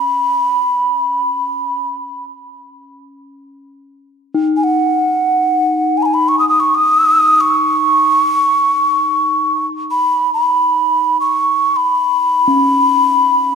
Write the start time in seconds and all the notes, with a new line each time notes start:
Already playing: C#4 B5
4.34 D#4
4.57 G#5
4.64 F#5
5.97 G#5
6.03 G#5 B5
6.14 B5
6.28 C#6
6.39 D#6
6.49 D#6
6.60 C#6
6.75 D#6
7.41 C#6
9.91 B5
10.34 B5
11.20 C#6
11.76 B5
12.48 C#4